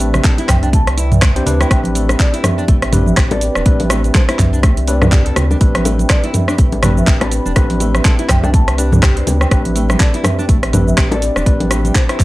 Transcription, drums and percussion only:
0.00 open hi-hat, shaker
0.13 cross-stick, closed hi-hat, muted conga, high conga, low conga, shaker
0.24 kick, clap, closed hi-hat, shaker
0.38 closed hi-hat
0.49 kick, cross-stick, clap, mid tom, open hi-hat, high conga, shaker
0.63 closed hi-hat, shaker
0.73 kick, closed hi-hat, shaker
0.87 cross-stick, closed hi-hat, muted conga
0.98 open hi-hat, shaker
1.12 closed hi-hat, mid tom, high conga, low conga, shaker
1.22 kick, cross-stick, clap, closed hi-hat, muted conga, low conga, shaker
1.36 closed hi-hat
1.46 open hi-hat, low conga, shaker
1.61 cross-stick, closed hi-hat, muted conga, shaker
1.71 kick, cross-stick, closed hi-hat, shaker
1.84 closed hi-hat, high conga
1.95 open hi-hat, shaker
2.09 cross-stick, closed hi-hat, low bongo, muted conga, high conga, shaker
2.20 kick, clap, closed hi-hat, shaker
2.34 closed hi-hat
2.44 cross-stick, mid tom, open hi-hat, low bongo, muted conga, high conga, shaker
2.59 shaker
2.68 kick, closed hi-hat, shaker
2.82 cross-stick, closed hi-hat, muted conga
2.92 mid tom, open hi-hat, low bongo, high conga, low conga, shaker
3.06 high conga, shaker
3.17 kick, cross-stick, clap, closed hi-hat, shaker
3.31 closed hi-hat, high bongo, low bongo
3.41 open hi-hat, shaker
3.55 cross-stick, muted conga, shaker
3.66 kick, closed hi-hat, shaker
3.80 open hi-hat, low bongo, high conga
3.90 cross-stick, open hi-hat, high bongo, shaker
4.04 closed hi-hat, muted conga, high conga, shaker
4.15 kick, clap, closed hi-hat, low bongo, shaker
4.29 cross-stick, closed hi-hat
4.39 kick, clap, mid tom, open hi-hat, high conga, shaker
4.54 shaker
4.63 kick, cross-stick, closed hi-hat, low bongo, shaker
4.77 closed hi-hat, muted conga
4.88 open hi-hat, shaker
5.02 cross-stick, mid tom, low bongo, high conga, low conga, shaker
5.12 kick, clap, closed hi-hat, muted conga, low conga, shaker
5.26 closed hi-hat
5.36 cross-stick, open hi-hat, high bongo, low conga, shaker
5.51 low bongo, muted conga, shaker
5.61 kick, closed hi-hat, shaker
5.75 cross-stick, closed hi-hat, high conga
5.85 open hi-hat, low bongo, shaker
5.99 closed hi-hat, muted conga, high conga, shaker
6.10 kick, cross-stick, clap, closed hi-hat, shaker
6.24 closed hi-hat
6.33 mid tom, open hi-hat, low bongo, muted conga, high conga, shaker
6.48 cross-stick, shaker
6.58 kick, closed hi-hat, shaker
6.72 closed hi-hat, low bongo, muted conga
6.83 cross-stick, mid tom, open hi-hat, high conga, low conga, shaker
6.97 high conga, shaker
7.07 kick, clap, closed hi-hat, shaker
7.21 cross-stick, closed hi-hat, high bongo, low bongo
7.32 open hi-hat, shaker
7.46 muted conga, shaker
7.56 kick, cross-stick, closed hi-hat, low bongo, shaker
7.70 open hi-hat, high conga
7.80 open hi-hat, high bongo, shaker
7.95 cross-stick, closed hi-hat, muted conga, high conga, shaker
8.05 kick, clap, closed hi-hat, low bongo, shaker
8.19 closed hi-hat
8.29 kick, cross-stick, clap, mid tom, open hi-hat, high conga, shaker
8.43 low bongo, shaker
8.54 kick, closed hi-hat, shaker
8.68 cross-stick, closed hi-hat, muted conga
8.78 open hi-hat, shaker
8.92 mid tom, low bongo, high conga, low conga, shaker
9.02 kick, cross-stick, clap, closed hi-hat, muted conga, low conga, shaker
9.17 closed hi-hat
9.27 open hi-hat, high bongo, low bongo, low conga, shaker
9.41 cross-stick, muted conga, shaker
9.51 kick, cross-stick, closed hi-hat, shaker
9.65 closed hi-hat, high conga
9.76 open hi-hat, shaker
9.89 cross-stick, closed hi-hat, low bongo, muted conga, high conga, shaker
10.00 kick, clap, closed hi-hat, shaker
10.14 closed hi-hat
10.24 cross-stick, mid tom, open hi-hat, low bongo, muted conga, high conga, shaker
10.39 shaker
10.49 kick, closed hi-hat, shaker
10.63 cross-stick, closed hi-hat, muted conga
10.73 mid tom, open hi-hat, low bongo, high conga, low conga, shaker
10.87 high conga, shaker
10.98 kick, cross-stick, clap, closed hi-hat, shaker
11.11 closed hi-hat, high bongo, low bongo
11.22 open hi-hat, shaker
11.36 cross-stick, muted conga, shaker
11.46 kick, closed hi-hat, shaker
11.60 open hi-hat, low bongo, high conga
11.71 cross-stick, open hi-hat, high bongo, shaker
11.85 closed hi-hat, muted conga, high conga, shaker
11.95 kick, clap, closed hi-hat, low bongo, shaker
12.09 cross-stick, closed hi-hat
12.20 kick, clap, mid tom, open hi-hat, high conga, shaker

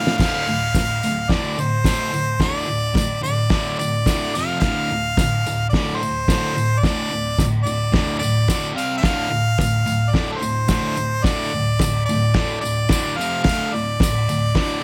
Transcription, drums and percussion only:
0.05 snare, tambourine
0.20 kick, snare, crash, tambourine
0.47 tambourine
0.75 kick, snare, tambourine, crash
1.03 tambourine
1.29 kick, snare, crash
1.59 tambourine
1.85 kick, snare, tambourine, crash
2.14 tambourine
2.40 kick, snare, tambourine, crash
2.71 tambourine
2.95 kick, snare, tambourine, crash
3.26 tambourine
3.50 kick, snare, crash
3.81 tambourine
4.06 kick, snare, tambourine, crash
4.35 tambourine
4.61 kick, snare, tambourine, crash
4.91 tambourine
5.17 kick, snare, tambourine, crash
5.47 tambourine
5.73 kick, snare, crash
6.03 tambourine
6.28 kick, snare, tambourine, crash
6.58 tambourine
6.84 kick, snare, tambourine, crash
7.13 tambourine
7.39 kick, snare, tambourine, crash
7.66 tambourine
7.93 kick, snare, crash
8.23 tambourine
8.48 kick, snare, tambourine, crash
8.78 tambourine
9.03 kick, snare, tambourine, crash
9.34 tambourine
9.58 kick, snare, tambourine, crash
9.87 tambourine
10.14 kick, snare, crash
10.43 tambourine
10.68 kick, snare, tambourine, crash
10.97 tambourine
11.24 kick, snare, tambourine, crash
11.55 tambourine
11.79 kick, snare, tambourine, crash
12.09 tambourine
12.34 kick, snare, crash
12.65 tambourine
12.89 kick, snare, tambourine, crash
13.21 tambourine
13.44 kick, snare, crash
13.49 tambourine
13.76 tambourine
14.00 kick, snare, tambourine, crash
14.29 tambourine
14.55 kick, snare, crash

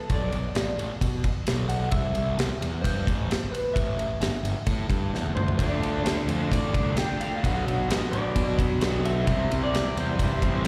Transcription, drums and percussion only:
0.10 kick, ride
0.32 ride
0.55 snare, ride
0.79 ride
1.01 kick, ride
1.24 kick, ride
1.47 snare, ride
1.69 ride
1.91 kick, ride
2.15 ride
2.39 snare, ride
2.62 ride
2.84 kick, ride
3.07 kick, ride
3.31 snare, ride
3.54 ride
3.76 kick, ride
3.99 ride
4.22 snare, ride
4.45 ride
4.67 kick, ride
4.90 kick, ride
5.15 snare
5.26 high tom
5.37 mid tom
5.48 floor tom
5.59 kick, ride
5.83 ride
6.06 snare, ride
6.29 ride
6.52 kick, ride
6.74 kick, ride
6.97 snare, ride
7.21 ride
7.44 kick, ride
7.68 ride
7.90 snare, ride
8.13 ride
8.36 kick, ride
8.59 kick, ride
8.81 snare, ride
9.05 ride
9.27 kick, ride
9.51 ride
9.75 snare, ride
9.97 ride
10.19 kick, ride
10.42 kick, ride

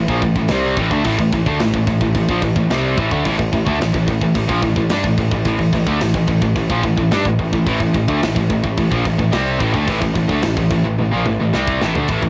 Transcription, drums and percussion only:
0.08 kick
0.22 kick, crash
0.36 kick
0.48 snare, crash
0.77 kick, crash
0.91 kick
1.04 kick, crash
1.19 kick
1.32 kick, crash
1.46 kick
1.59 snare, crash
1.74 kick
1.87 kick, crash
2.01 kick
2.15 kick, crash
2.29 kick
2.42 kick, crash
2.56 kick
2.70 snare, crash
2.98 kick, crash
3.11 kick
3.25 kick, crash
3.39 kick
3.53 kick, crash
3.67 kick
3.81 snare, crash
3.94 kick
4.08 kick, crash
4.22 kick
4.35 kick, crash
4.49 kick
4.63 kick, crash
4.76 kick
4.89 snare, crash
5.04 kick
5.18 kick, crash
5.31 kick
5.45 kick, crash
5.59 kick
5.72 kick, crash
5.87 kick
6.00 snare, crash
6.14 kick
6.27 kick, crash
6.42 kick
6.56 kick, crash
6.70 kick
6.83 kick, crash
6.98 kick
7.11 snare, crash
7.25 kick
7.39 kick, crash
7.53 kick
7.66 kick, crash
7.80 kick
7.94 kick, crash
8.08 kick
8.23 snare, crash
8.36 kick
8.50 kick, crash
8.64 kick
8.77 kick, crash
8.92 kick
9.05 kick, crash
9.19 kick
9.32 snare, crash
9.60 kick, crash
9.74 kick
9.87 kick, crash
10.02 kick
10.15 kick, crash
10.29 kick
10.42 snare, crash
10.57 kick
10.70 kick, crash
10.98 high tom
11.26 mid tom
11.54 snare
11.67 kick
11.81 snare
11.95 floor tom
12.08 kick, open hi-hat
12.22 kick

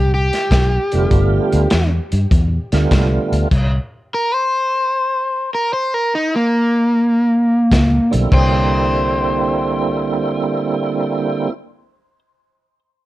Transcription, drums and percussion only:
0.33 snare, closed hi-hat
0.51 kick, snare, closed hi-hat
0.92 closed hi-hat
1.11 kick, closed hi-hat
1.52 closed hi-hat
1.70 snare, closed hi-hat
2.12 closed hi-hat
2.31 kick, closed hi-hat
2.72 snare, closed hi-hat
2.91 kick, snare, closed hi-hat
3.33 closed hi-hat
3.51 kick, closed hi-hat, crash
7.72 kick, snare, closed hi-hat
8.13 closed hi-hat
8.32 kick, crash

